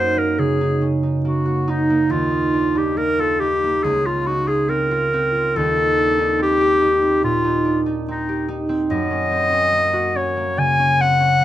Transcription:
Already playing: F#2 A#3 D#4 F#4 C5
0.16 A#3 A#4
0.38 C#3 G#4
0.61 D#4
0.81 C#4
1.03 D#4
1.25 A#3 F#4
1.46 F#4
1.68 D#4
1.90 A#3
2.10 D#2 F4
2.31 D#4
2.54 D4
2.75 D#4 G4
2.97 A#3 A#4
3.19 F4 A4
3.40 D#4 G4
3.64 A#3
3.83 C#2 G#4
4.06 F4
4.26 D#4 F#4
4.47 F4 G#4
4.69 C4 A#4
4.91 F4
5.13 C4
5.35 F4
5.56 D#2 A4
5.77 D#4
5.98 D4
6.19 D#4
6.39 C4 G4
6.61 G4
6.81 D#4
7.02 C4
7.23 A#2 F4
7.45 D#4
7.65 D4
7.86 D#4
8.08 C4 D#4
8.29 G4
8.48 D#4
8.69 C4
8.90 F#2 D#5
9.11 C#4
9.31 C4
9.52 C#4
9.72 A#3
9.93 F#4
10.15 C#4 C#5
10.37 A#3
10.57 C#3 G#5
10.79 C#4
11.00 C4 F#5
11.20 C#4
11.40 A#3

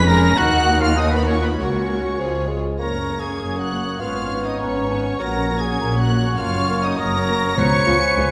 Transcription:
Already playing: F1 F2 G#3 C#4
0.07 G#3 C#4 G#4 A#4 C#5 A#5 A#6
0.37 D#2 A#3 D#4 F#4 A#4 F#5 F#6
0.80 F4 F5 F6
0.96 A#3 D#4 F#4 A#4 D#5 D#6
1.10 B3 B4
1.15 B5
1.26 C#4 F4 C#5 C#6
1.41 B3 B4 B5
1.56 C#2 A#3 C#4 F#4 A#4 C#5 C#6
2.18 C#2 F3 G#3 F4 G#4 C#5
2.48 G#3
2.79 F#1 F#2 A#3 C#4 A#4 C#5 A#5 C#6 A#6
2.95 C#4 A#4
3.10 A#3 C#5
3.20 G#4 G#5 G#6
3.26 C#4 A#4
3.39 F#1 F#2 A#3 C#5 D#6
3.56 C#4 F#4 A#4 F#5
3.61 F#6
3.71 A#3 C#5
3.86 C#4 A#4
3.99 G#1 G#2 B3 F4 B4 F5 C#6 F6
4.17 C#4 C#5
4.32 B3 B4
4.45 C#4 D#4 C#5 D#5 D#6
4.59 G#1 G#2 B3 C#4 B4 C#5 A#5 C#6
4.76 C#4 C#5
4.90 B3 B4 G#5
5.05 C#4 C#5
5.19 A#1 A#2 F#3 A#3 C#4 A#4 C#5 F#5 A#5 A#6
5.36 C#4 C#5
5.50 A#3 A#4
5.59 G#4 G#5 G#6
5.65 C#4 C#5
5.80 A#1 A#2 A#3 A#4 A#5
5.95 C#4 C#5
5.99 F#4 F#5 F#6
6.09 A#3 A#4 C#6
6.25 C#4 C#5
6.38 F#1 F#2 A#3 F4 A#4 F5 F6
6.54 C#4 C#5
6.69 A#3 A#4
6.83 C#4 D#4 C#5 D#5 D#6
6.98 F#1 F#2 A#3 A#4 A#5 D#6 A#6
7.13 C#4 C#5
7.27 A#3 A#4 C#6
7.42 C#4 C#5
7.57 C#2 C#3 F3 B3 F4 B4 C#5 A#5 C#6 C#7
7.86 C#2 B3 F4 G#5
8.17 C#2 B3 F4

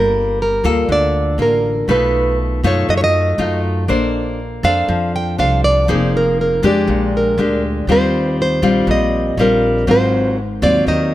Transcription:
Already playing: G1 G3 A#3 F4 A#4
0.42 A#4
0.64 D2 A#3 F4 A4
0.88 D2 D3 D5
1.38 A1 A#3 F4
1.42 A#4
1.88 B1 B2 A3 D#4 F4 B4
2.63 F#2 A3 D#4 F4 C#5
2.89 F#2 F#3 D#5
2.98 C#5
3.04 D#5
3.38 F#2 A3 D#4 F4
3.88 A#1 A#3 D4 A4 C5
4.63 F2 D4 A4 C5 F5
4.88 F2 F3
5.16 G5
5.38 C2 D4 A4 C5 F5
5.64 D5
5.88 F1 F3 A#3 D#4 G#4 C5
6.17 A#4
6.41 A#4
6.63 F2 G#3 D4 G4
6.67 D5
6.87 A#1 A#2
7.17 A#4
7.38 D2 G#3 D4 G4
7.87 D#2 D#3 G3 C4 F4
7.92 C5
8.42 C5
8.62 A#1 G3 C4 F4
8.87 A#1 A#2 D#5
9.37 A#1 G3 C4 F4 A#4
9.87 G#1 G#2 F#3 C4 F4 C5
10.62 D#2 F#3 C4 F4 D5
10.87 D#2 D#3 D#5

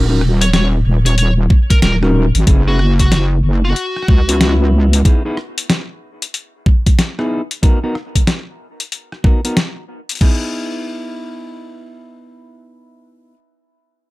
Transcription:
Already playing: D#1
0.09 C#4 D#4 F#4 A#4
0.21 cross-stick
0.41 C#5, closed hi-hat
0.53 C#5, snare, closed hi-hat
0.86 D#1
1.06 C#5, closed hi-hat
1.18 C#5, closed hi-hat
1.50 kick
1.70 A#4, kick, closed hi-hat
1.82 D#1 A#4, snare, closed hi-hat
2.03 C#4 D#4 F#4 A#4, cross-stick
2.35 G#1, closed hi-hat
2.47 F#1 B3 C#4 E4 G#4, kick, closed hi-hat
2.67 B3 C#4 E4 F#4 G#4
2.79 cross-stick
2.99 F#4, kick, closed hi-hat
3.12 snare, closed hi-hat
3.44 F#1
3.65 F#4
3.76 closed hi-hat
3.96 cross-stick
4.03 cross-stick
4.08 C#2, kick, cross-stick
4.19 cross-stick
4.29 B3 C#4 E4 F#4, closed hi-hat
4.41 snare, closed hi-hat
4.93 closed hi-hat
5.05 B3 D#4 E4 G#4, kick, closed hi-hat
5.25 B3 D#4 E4 G#4
5.37 cross-stick
5.58 closed hi-hat
5.70 snare, closed hi-hat
6.22 closed hi-hat
6.34 closed hi-hat
6.66 kick
6.86 kick, closed hi-hat
6.99 snare, closed hi-hat
7.19 B3 D#4 E4 G#4, cross-stick
7.51 closed hi-hat
7.63 B3 D#4 F#4 A#4, kick, closed hi-hat
7.83 B3 D#4 F#4 A#4
7.95 cross-stick
8.15 kick, closed hi-hat
8.27 snare, closed hi-hat
8.80 closed hi-hat
8.92 closed hi-hat
9.12 cross-stick
9.24 B3 D#4 F#4 A#4, kick, cross-stick
9.45 B3 D#4 F#4 A#4, closed hi-hat
9.57 snare, closed hi-hat
10.09 closed hi-hat
10.11 closed hi-hat
10.15 closed hi-hat
10.17 closed hi-hat
10.19 B3 D#4 E4 G#4, kick, closed hi-hat, crash

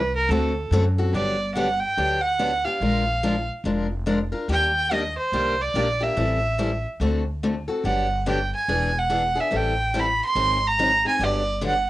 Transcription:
Already playing: C2 B4
0.16 A#4
0.29 D2 D3 A3 C4 F#4 A4
0.71 F#2 D3 A3 C4 F#4 A4
0.98 C4 F#4 A4
1.13 G1 D3 F#3 B3 D4 G4 D5
1.55 D3 F#3 B3 D4 G4 F#5
1.80 G5
1.98 D2 D3 F#3 B3 D4 G4
2.21 F#5
2.39 D3 F#3 B3 D4 G4
2.64 B3 D4 G4 F5
2.81 A#1 F3 G#3 D4 F4 A#4
3.23 F3 G#3 D4 F4 A#4
3.64 F1 F3 G#3 D4 F4 A#4
4.06 F3 G#3 D4 F4 A#4
4.32 D4 F4 A#4
4.48 D#2 D#3 G3 A#3 D4 G4
4.53 G5
4.91 D#3 G3 A#3 D4 G4 D#5
5.18 C5
5.32 C2 D#3 G3 A#3 D4 G4
5.61 D5
5.74 A#1 D#3 G3 A#3 D4 G4
6.00 A#3 D4 G4 E5
6.17 A1 E3 G3 C4 E4 A4
6.58 E3 G3 C4 E4 A4
7.00 D2 D3 A3 C4 F#4 A4
7.43 D3 A3 C4 F#4 A4
7.68 C4 F#4 A4
7.84 G1 D3 F#3 B3 D4 G4 F#5
8.26 D3 F#3 B3 D4 G4 G5
8.55 G#5
8.68 E1 E3 B3 D4 G#4
8.98 F#5
9.09 E3 B3 D4 G#4
9.35 B3 D4 G#4
9.40 E5
9.51 A1 E3 G3 C4 E4 A4
9.56 G5
9.94 E3 G3 C4 E4 A4
9.99 B5
10.25 C6
10.35 G#1 D#3 F#3 C4 D#4 G#4
10.67 A#5
10.79 D#3 F#3 C4 D#4 G#4
11.05 C4 D#4 G#4 G#5
11.19 G1 D3 F#3 B3 D4 G4
11.23 D5
11.61 D3 F#3 B3 D4 G4
11.67 F#5

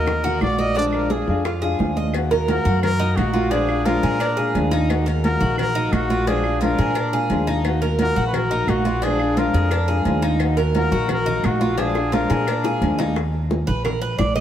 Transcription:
Already playing: D#2 A#4 D#5
0.06 muted nylon-string guitar stroke, high bongo, high conga, low conga, claves
0.24 A#3 D#4 F#4, high bongo, high conga, low conga
0.41 A#1 D#3 A#3 D#4 F#4 D5, high bongo, low bongo, high conga, claves
0.58 D5 D#5, high bongo, high conga
0.76 F3 G#3 D4 F4 D5, high bongo
0.93 A#4, high bongo, high conga, claves
1.10 G#4, high bongo, high conga
1.27 F2 G#3 D4 F4, high conga
1.45 F4, muted nylon-string guitar stroke, high bongo, high conga, claves
1.62 G#3 D4 F4 G#4, high bongo, high conga
1.79 D#2 F3 G#3 D4 F4, high bongo, low bongo, high conga
1.96 D#5, high bongo, high conga
2.14 D#3 A#3 D#4 F#4, cowbell, claves
2.31 A#3 D#4 F#4 A#4, cowbell, high conga
2.48 D#3 A#3 D#4 F#4 A#4, cowbell, high conga
2.65 F#2 F#4, high conga
2.82 A#4, muted nylon-string guitar stroke, cowbell, high conga, low conga, claves
2.99 A#3 D#4 F#4, high conga
3.16 A#1 D#3 A#3 D#4 F#4, cowbell, high conga, claves
3.33 A#3 D#4 F4 F#4, high conga
3.51 F3 G#3 D4 F4 G#4, cowbell
3.68 G#3 D4 F4, high conga, claves
3.85 F3 G#3 D4 F4 A#4, cowbell, high conga
4.03 A#2 G#4, cowbell, high conga
4.20 D4, muted nylon-string guitar stroke, cowbell, high conga, claves
4.37 G#3 D4 F4 G#4, high conga
4.54 D#2 F3 G#3 D4 F4, cowbell, high conga
4.71 G#3 D4 D#4 F4, cowbell
4.89 D#3 A#3 D#4 F#4, cowbell, high conga, claves
5.06 A#3 D#4 F#4 A#4, cowbell, high conga
5.23 D#3 A#3 D#4 F#4 A#4, cowbell, high conga
5.40 A#1 F#4
5.58 A#4, muted nylon-string guitar stroke, cowbell, high conga, low conga, claves
5.75 A#3 D#4 F#4, high conga
5.92 A#1 D#3 A#3 D#4 F#4, cowbell, high conga, claves
6.09 A#3 D#4 F4 F#4, high conga
6.26 F3 G#3 D4 F4 G#4, cowbell, high conga
6.44 G#3 D4 F4, high conga, claves
6.61 F3 G#3 D4 F4 A#4, cowbell, high conga
6.79 A#2 G#4, cowbell
6.95 D4, muted nylon-string guitar stroke, cowbell, high conga, claves
7.12 G#3 D4 F4 G#4, high conga
7.30 D#2 F3 G#3 D4 F4, cowbell, high conga
7.47 G#3 D4 D#4 F4, cowbell
7.64 D#3 A#3 D#4 F#4, cowbell, high conga, claves
7.81 A#3 D#4 F#4 A#4, cowbell, high conga
7.99 D#3 A#3 D#4 F#4 A#4, cowbell, high conga
8.16 A#1 F#4, high conga
8.27 B4
8.33 A#4, muted nylon-string guitar stroke, cowbell, high conga, low conga, claves
8.50 A#3 D#4 F#4, high conga
8.67 A#1 D#3 A#3 D#4 F#4, cowbell, high conga, claves
8.85 A#3 D#4 F4 F#4, high conga
9.02 F3 G#3 D4 F4 G#4, cowbell, high conga
9.18 G#3 D4 F4, high conga, claves
9.36 F3 G#3 D4 F4 A#4, cowbell, high conga
9.54 F2 G#4, cowbell
9.70 D4, muted nylon-string guitar stroke, cowbell, high conga, claves
9.88 G#3 D4 F4 G#4, high conga
10.05 D#2 F3 G#3 D4 F4, cowbell, high conga
10.22 G#3 D4 D#4 F4, cowbell
10.39 D#3 A#3 D#4 F#4, cowbell, high conga, claves
10.57 A#3 D#4 F#4 A#4, cowbell, high conga
10.74 D#3 A#3 D#4 F#4 A#4, cowbell, high conga
10.91 A#1 F#4, high conga
11.09 A#4, muted nylon-string guitar stroke, cowbell, high conga, low conga, claves
11.25 A#3 D#4 F#4, high conga, low conga
11.43 A#1 D#3 A#3 D#4 F#4, cowbell, high conga, claves
11.60 A#3 D#4 F4 F#4, high conga
11.77 F3 G#3 D4 F4 G#4, cowbell, high bongo, high conga
11.95 G#3 D4 F4, high bongo, high conga, claves
12.12 F3 G#3 D4 F4 A#4, cowbell, high bongo, high conga
12.30 A#2 G#4, cowbell, low bongo, high conga
12.47 D4, muted nylon-string guitar stroke, cowbell, high conga, claves
12.64 G#3 D4 F4 G#4, low bongo, high conga
12.81 D#2 F3 G#3 D4 F4, cowbell, high conga
12.98 G#3 D4 D#4 F4, cowbell, low bongo, high conga
13.16 high bongo, high conga, claves
13.34 high bongo, high conga
13.51 high bongo, high conga
13.67 A#1 B4, high conga
13.85 A#4, high bongo, high conga, low conga, claves
14.02 B4, high bongo, high conga
14.19 A#1 D5, high bongo, low bongo, high conga, claves
14.36 D#5, high bongo, high conga

